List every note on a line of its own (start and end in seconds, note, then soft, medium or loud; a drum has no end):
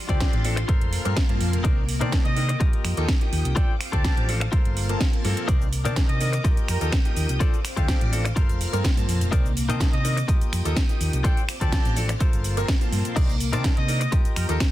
0.00 0.68 F4 medium
0.00 0.68 D5 medium
0.00 1.63 C6 medium
0.09 0.24 D2 loud
0.09 0.42 F3 medium
0.09 0.42 C4 medium
0.09 0.42 D4 medium
0.09 0.33 F4 medium
0.09 0.42 G4 medium
0.09 0.33 A4 medium
0.09 0.33 C5 medium
0.09 0.34 D5 loud
0.09 kick medium
0.09 closed hi-hat medium
0.20 kick loud
0.20 snare loud
0.20 closed hi-hat medium
0.33 0.62 A1 loud
0.33 closed hi-hat soft
0.44 0.57 F3 medium
0.44 0.57 C4 medium
0.44 0.57 D4 medium
0.44 0.57 A4 medium
0.44 open hi-hat loud
0.56 finger snap medium
0.56 muted clean electric guitar stroke loud
0.56 closed hi-hat medium
0.68 3.54 A#3 medium
0.68 1.16 F4 medium
0.68 1.17 A4 medium
0.68 1.17 A#4 medium
0.68 1.17 C5 loud
0.68 1.64 F5 medium
0.68 1.64 A5 medium
0.68 kick loud
0.68 closed hi-hat medium
0.81 0.96 F1 loud
0.81 closed hi-hat soft
0.93 open hi-hat loud
1.05 1.13 G2 medium
1.05 1.16 F3 medium
1.05 1.16 A#3 medium
1.05 1.16 C4 medium
1.05 1.16 A#4 medium
1.05 closed hi-hat medium
1.16 kick loud
1.16 snare loud
1.16 closed hi-hat medium
1.29 1.36 G2 medium
1.29 1.62 F3 medium
1.29 1.62 A#3 medium
1.29 1.62 C4 medium
1.29 1.62 A5 medium
1.29 closed hi-hat soft
1.41 1.55 F2 loud
1.41 open hi-hat loud
1.53 1.61 F1 medium
1.53 closed hi-hat medium
1.64 2.03 C2 loud
1.64 1.77 D#3 medium
1.64 1.77 C4 medium
1.64 1.77 D4 medium
1.64 1.83 D#4 loud
1.64 1.83 A#4 loud
1.64 1.77 A#4 medium
1.64 1.83 C5 loud
1.64 1.83 D5 loud
1.64 2.60 D6 medium
1.64 kick loud
1.64 closed hi-hat medium
1.89 open hi-hat loud
2.00 2.16 C3 loud
2.00 2.34 D#3 medium
2.00 2.34 C4 medium
2.00 2.25 D#4 loud
2.00 2.25 A#4 medium
2.00 2.25 C5 medium
2.00 2.34 D5 medium
2.00 2.26 D5 medium
2.00 2.34 A5 medium
2.00 closed hi-hat medium
2.12 kick loud
2.12 snare loud
2.12 closed hi-hat medium
2.25 2.54 C3 loud
2.25 2.61 D#5 loud
2.25 closed hi-hat soft
2.36 2.49 D#3 medium
2.36 2.49 C4 medium
2.36 2.49 D4 medium
2.36 2.49 A#4 medium
2.36 open hi-hat loud
2.49 muted clean electric guitar stroke medium
2.49 closed hi-hat soft
2.60 3.08 F4 medium
2.60 3.08 G4 medium
2.60 3.09 A#4 medium
2.60 3.09 D#5 loud
2.60 3.55 G5 medium
2.60 3.55 D#6 medium
2.60 kick loud
2.60 closed hi-hat medium
2.73 muted fingered electric bass stroke soft
2.73 closed hi-hat soft
2.85 2.93 F2 medium
2.85 finger snap medium
2.85 open hi-hat loud
2.97 3.04 D#2 medium
2.97 3.08 F3 medium
2.97 3.08 A#3 medium
2.97 3.08 D#4 medium
2.97 3.08 A4 loud
2.97 closed hi-hat soft
3.08 finger snap medium
3.08 kick loud
3.08 snare loud
3.08 closed hi-hat medium
3.21 3.54 F3 medium
3.21 3.54 A#3 medium
3.21 3.54 D#4 medium
3.21 3.54 G4 medium
3.21 closed hi-hat soft
3.33 3.41 D#2 loud
3.33 open hi-hat loud
3.45 3.52 C2 loud
3.45 closed hi-hat medium
3.56 3.69 F3 medium
3.56 3.69 C4 medium
3.56 3.69 D4 medium
3.56 3.74 F4 loud
3.56 3.75 A4 loud
3.56 3.69 A4 medium
3.56 4.52 C5 medium
3.56 3.75 C5 loud
3.56 3.75 D5 loud
3.56 4.51 F5 medium
3.56 3.75 G5 medium
3.56 4.51 D6 medium
3.56 kick loud
3.56 closed hi-hat medium
3.81 finger snap medium
3.81 open hi-hat loud
3.92 4.08 D2 loud
3.92 4.26 F3 medium
3.92 4.26 C4 medium
3.92 4.26 D4 medium
3.92 4.17 F4 medium
3.92 4.26 G4 medium
3.92 4.17 A4 medium
3.92 4.17 C5 medium
3.92 4.17 D5 loud
3.92 4.28 A5 medium
3.92 kick medium
3.92 closed hi-hat medium
4.04 kick loud
4.04 snare loud
4.04 closed hi-hat medium
4.17 4.46 A1 loud
4.17 closed hi-hat soft
4.28 4.41 F3 medium
4.28 4.41 C4 medium
4.28 4.41 D4 medium
4.28 4.41 A4 medium
4.28 open hi-hat loud
4.40 finger snap medium
4.40 muted clean electric guitar stroke medium
4.40 closed hi-hat medium
4.52 5.48 A#3 medium
4.52 5.00 F4 medium
4.52 5.00 A4 medium
4.52 5.01 A#4 medium
4.52 5.01 C5 loud
4.52 5.48 F5 medium
4.52 5.48 A5 medium
4.52 5.48 C6 medium
4.52 kick loud
4.52 closed hi-hat medium
4.65 4.94 G1 loud
4.65 closed hi-hat soft
4.77 open hi-hat loud
4.89 5.22 F3 medium
4.89 5.22 A#3 medium
4.89 5.22 C4 medium
4.89 5.22 A5 medium
4.89 closed hi-hat soft
5.01 kick loud
5.01 snare loud
5.01 closed hi-hat medium
5.13 closed hi-hat soft
5.24 5.33 G2 loud
5.24 5.46 F3 medium
5.24 5.46 A#3 medium
5.24 5.46 C4 medium
5.24 5.46 A4 loud
5.24 open hi-hat loud
5.37 closed hi-hat soft
5.48 5.87 C2 loud
5.48 5.66 D#4 loud
5.48 5.67 A#4 loud
5.48 7.39 A#4 medium
5.48 5.67 C5 loud
5.48 5.67 D5 loud
5.48 6.43 D6 medium
5.48 kick loud
5.48 closed hi-hat medium
5.48 shaker soft
5.62 shaker soft
5.73 open hi-hat loud
5.73 shaker medium
5.85 6.00 C3 loud
5.85 6.18 D#3 medium
5.85 6.18 C4 medium
5.85 6.09 D#4 medium
5.85 6.09 A#4 medium
5.85 6.09 C5 medium
5.85 6.18 D5 medium
5.85 6.10 D5 loud
5.85 6.18 A5 medium
5.85 closed hi-hat medium
5.85 shaker soft
5.96 kick loud
5.96 snare loud
5.96 closed hi-hat medium
5.96 shaker soft
6.09 6.38 C3 loud
6.09 6.45 D#5 loud
6.09 closed hi-hat soft
6.20 6.32 D#3 medium
6.20 6.33 C4 medium
6.20 6.33 D4 medium
6.20 6.33 A#4 medium
6.20 open hi-hat medium
6.20 shaker medium
6.33 muted clean electric guitar stroke medium
6.33 closed hi-hat soft
6.33 shaker soft
6.44 6.92 F4 medium
6.44 6.93 G4 medium
6.44 6.93 A#4 medium
6.44 6.93 D#5 loud
6.44 7.40 G5 medium
6.44 7.40 D#6 medium
6.44 kick loud
6.44 closed hi-hat medium
6.44 shaker soft
6.57 muted fingered electric bass stroke soft
6.57 closed hi-hat soft
6.57 shaker soft
6.68 6.77 F2 medium
6.68 6.77 A#4 medium
6.68 finger snap medium
6.68 open hi-hat loud
6.68 shaker medium
6.81 6.88 D#2 medium
6.81 6.92 F3 medium
6.81 6.92 A#3 medium
6.81 6.92 D#4 medium
6.81 6.92 A4 medium
6.81 6.89 A#4 medium
6.81 closed hi-hat soft
6.81 shaker soft
6.92 finger snap medium
6.92 kick loud
6.92 snare loud
6.92 closed hi-hat medium
6.92 shaker soft
7.05 7.38 F3 medium
7.05 7.38 A#3 medium
7.05 7.38 D#4 medium
7.05 7.38 G4 medium
7.05 closed hi-hat soft
7.05 shaker soft
7.16 7.25 D#2 loud
7.16 open hi-hat medium
7.16 shaker medium
7.29 7.37 C2 loud
7.29 closed hi-hat medium
7.29 shaker soft
7.40 7.52 F3 medium
7.40 7.52 C4 medium
7.40 7.53 D4 medium
7.40 7.59 F4 loud
7.40 7.59 A4 loud
7.40 7.53 A4 medium
7.40 8.36 C5 medium
7.40 7.59 C5 loud
7.40 7.59 D5 loud
7.40 9.31 F5 medium
7.40 8.35 D6 medium
7.40 kick loud
7.40 closed hi-hat medium
7.40 shaker soft
7.54 shaker soft
7.65 finger snap medium
7.65 open hi-hat loud
7.65 shaker medium
7.76 7.92 D2 loud
7.76 8.10 F3 medium
7.76 8.10 C4 medium
7.76 8.10 D4 medium
7.76 8.01 F4 medium
7.76 8.10 G4 medium
7.76 8.01 A4 medium
7.76 8.01 C5 medium
7.76 8.02 F5 medium
7.76 kick medium
7.76 closed hi-hat medium
7.76 shaker soft
7.88 kick loud
7.88 snare loud
7.88 closed hi-hat medium
7.88 shaker soft
8.01 8.30 A1 loud
8.01 closed hi-hat soft
8.12 8.24 F3 medium
8.12 8.24 C4 medium
8.12 8.25 D4 medium
8.12 8.25 A4 medium
8.12 open hi-hat medium
8.12 shaker medium
8.25 finger snap medium
8.25 muted clean electric guitar stroke loud
8.25 closed hi-hat soft
8.25 shaker soft
8.36 8.45 G1 medium
8.36 11.22 A#3 medium
8.36 8.84 F4 medium
8.36 8.84 A4 medium
8.36 8.85 A#4 medium
8.36 8.85 C5 loud
8.36 9.32 A5 medium
8.36 9.32 C6 medium
8.36 kick loud
8.36 closed hi-hat medium
8.36 shaker soft
8.49 8.64 F1 loud
8.49 closed hi-hat soft
8.49 shaker soft
8.61 open hi-hat loud
8.61 shaker medium
8.73 8.80 G2 medium
8.73 8.84 F3 medium
8.73 8.84 A#3 medium
8.73 8.84 C4 medium
8.73 8.84 A#4 loud
8.73 closed hi-hat medium
8.73 shaker soft
8.84 kick loud
8.84 snare loud
8.84 closed hi-hat medium
8.84 shaker soft
8.97 9.04 G2 medium
8.97 9.30 F3 medium
8.97 9.30 A#3 medium
8.97 9.30 C4 medium
8.97 9.30 A5 medium
8.97 closed hi-hat soft
8.97 shaker soft
9.08 9.22 F2 loud
9.08 open hi-hat medium
9.08 shaker medium
9.21 9.28 F1 medium
9.21 closed hi-hat medium
9.21 shaker soft
9.32 9.71 C2 loud
9.32 9.44 D#3 medium
9.32 9.44 C4 medium
9.32 9.45 D4 medium
9.32 9.51 D#4 loud
9.32 9.51 A#4 loud
9.32 9.45 A#4 medium
9.32 9.51 C5 loud
9.32 9.51 D5 loud
9.32 10.28 D6 medium
9.32 kick loud
9.32 closed hi-hat medium
9.32 shaker soft
9.46 shaker soft
9.57 open hi-hat loud
9.57 shaker medium
9.69 9.84 C3 loud
9.69 10.02 D#3 medium
9.69 10.02 C4 medium
9.69 9.93 D#4 medium
9.69 9.93 A#4 medium
9.69 9.93 C5 medium
9.69 9.94 D#5 loud
9.69 10.02 A5 loud
9.69 closed hi-hat medium
9.69 shaker soft
9.80 kick loud
9.80 snare loud
9.80 closed hi-hat medium
9.80 shaker soft
9.93 10.22 C3 loud
9.93 10.29 D#5 loud
9.93 closed hi-hat soft
10.04 10.16 D#3 medium
10.04 10.17 C4 medium
10.04 10.17 D4 medium
10.04 10.17 A#4 medium
10.04 open hi-hat medium
10.04 shaker medium
10.17 muted clean electric guitar stroke medium
10.17 closed hi-hat medium
10.17 shaker soft
10.28 10.76 F4 medium
10.28 10.77 G4 medium
10.28 10.77 A#4 medium
10.28 10.77 D#5 loud
10.28 11.23 G5 medium
10.28 11.23 D#6 medium
10.28 kick loud
10.28 closed hi-hat medium
10.28 shaker soft
10.41 muted fingered electric bass stroke soft
10.41 closed hi-hat soft
10.41 shaker soft
10.53 10.61 F2 medium
10.53 finger snap medium
10.53 open hi-hat loud
10.53 shaker medium
10.65 10.72 D#2 medium
10.65 10.76 F3 medium
10.65 10.76 A#3 medium
10.65 10.76 D#4 medium
10.65 10.76 A4 medium
10.65 closed hi-hat medium
10.65 shaker soft
10.76 finger snap medium
10.76 kick loud
10.76 snare loud
10.76 closed hi-hat medium
10.76 shaker soft
10.89 11.22 F3 medium
10.89 11.22 A#3 medium
10.89 11.22 D#4 medium
10.89 11.22 G4 medium
10.89 closed hi-hat soft
10.89 shaker soft
11.00 11.09 D#2 loud
11.00 open hi-hat medium
11.00 shaker medium
11.13 11.20 C2 loud
11.13 closed hi-hat medium
11.13 shaker soft
11.24 11.37 F3 medium
11.24 11.37 C4 medium
11.24 11.37 D4 medium
11.24 11.43 F4 loud
11.24 11.43 A4 loud
11.24 11.37 A4 loud
11.24 12.20 C5 medium
11.24 11.43 C5 loud
11.24 11.43 D5 loud
11.24 12.20 F5 medium
11.24 11.43 G5 medium
11.24 12.20 D6 medium
11.24 kick loud
11.24 closed hi-hat medium
11.24 shaker soft
11.37 closed hi-hat soft
11.37 shaker soft
11.49 finger snap medium
11.49 open hi-hat loud
11.49 shaker medium
11.61 11.76 D2 loud
11.61 11.94 F3 medium
11.61 11.94 C4 medium
11.61 11.94 D4 medium
11.61 11.85 F4 medium
11.61 11.94 G4 medium
11.61 11.85 A4 medium
11.61 11.86 C5 medium
11.61 11.86 D5 medium
11.61 11.97 A5 loud
11.61 kick medium
11.61 closed hi-hat medium
11.61 shaker soft
11.72 kick loud
11.72 snare loud
11.72 closed hi-hat medium
11.72 shaker soft
11.85 12.14 A1 loud
11.85 closed hi-hat soft
11.85 shaker soft
11.96 12.08 F3 medium
11.96 12.09 C4 medium
11.96 12.09 D4 medium
11.96 12.09 A4 medium
11.96 open hi-hat medium
11.96 shaker medium
12.09 finger snap medium
12.09 muted clean electric guitar stroke medium
12.09 closed hi-hat medium
12.09 shaker soft
12.20 14.71 A#3 medium
12.20 12.68 F4 medium
12.20 12.69 A4 medium
12.20 12.69 A#4 medium
12.20 12.69 C5 loud
12.20 13.16 F5 medium
12.20 13.15 A5 medium
12.20 13.16 C6 medium
12.20 kick loud
12.20 closed hi-hat medium
12.20 shaker soft
12.33 12.62 G1 loud
12.33 closed hi-hat soft
12.33 shaker soft
12.44 open hi-hat loud
12.44 shaker medium
12.57 12.68 F3 medium
12.57 12.68 A#3 medium
12.57 12.68 C4 medium
12.57 12.68 A#4 loud
12.57 closed hi-hat medium
12.57 shaker soft
12.68 kick loud
12.68 snare loud
12.68 closed hi-hat medium
12.68 shaker soft
12.81 13.14 F3 medium
12.81 13.14 A#3 medium
12.81 13.14 C4 medium
12.81 13.14 A5 medium
12.81 closed hi-hat soft
12.81 shaker soft
12.92 13.00 G2 medium
12.92 open hi-hat medium
12.92 shaker medium
13.05 closed hi-hat medium
13.05 shaker soft
13.16 13.55 C2 loud
13.16 13.28 D#3 medium
13.16 13.29 C4 medium
13.16 13.29 D4 medium
13.16 13.35 D#4 loud
13.16 13.35 A#4 loud
13.16 13.29 A#4 medium
13.16 13.35 C5 loud
13.16 13.35 D5 loud
13.16 14.11 D6 medium
13.16 kick loud
13.16 closed hi-hat medium
13.16 crash medium
13.16 shaker soft
13.29 shaker soft
13.40 open hi-hat loud
13.40 shaker medium
13.52 13.68 C3 loud
13.52 13.86 D#3 medium
13.52 13.86 C4 medium
13.52 13.77 D#4 medium
13.52 13.77 A#4 medium
13.52 13.77 C5 medium
13.52 13.86 D5 medium
13.52 13.78 D5 loud
13.52 13.86 A5 medium
13.52 closed hi-hat medium
13.52 shaker soft
13.64 kick loud
13.64 snare loud
13.64 closed hi-hat medium
13.64 shaker soft
13.77 14.06 C3 loud
13.77 14.13 D#5 loud
13.77 closed hi-hat soft
13.88 14.00 D#3 medium
13.88 14.00 C4 medium
13.88 14.01 D4 medium
13.88 14.01 A#4 medium
13.88 open hi-hat medium
13.88 shaker medium
14.00 muted clean electric guitar stroke medium
14.00 closed hi-hat medium
14.00 shaker soft
14.12 14.60 F4 medium
14.12 14.61 G4 medium
14.12 14.61 A#4 medium
14.12 14.61 D#5 medium
14.12 14.71 G5 medium
14.12 14.71 D#6 medium
14.12 kick loud
14.12 closed hi-hat medium
14.12 shaker soft
14.25 muted fingered electric bass stroke soft
14.25 closed hi-hat soft
14.25 shaker soft
14.36 14.45 F2 medium
14.36 14.45 A#4 medium
14.36 finger snap medium
14.36 open hi-hat loud
14.36 shaker medium
14.49 14.56 D#2 medium
14.49 14.60 F3 medium
14.49 14.60 A#3 medium
14.49 14.60 D#4 medium
14.49 14.60 A4 loud
14.49 14.56 A#4 medium
14.49 closed hi-hat medium
14.49 shaker soft
14.60 finger snap medium
14.60 kick loud
14.60 snare loud
14.60 closed hi-hat medium
14.60 shaker soft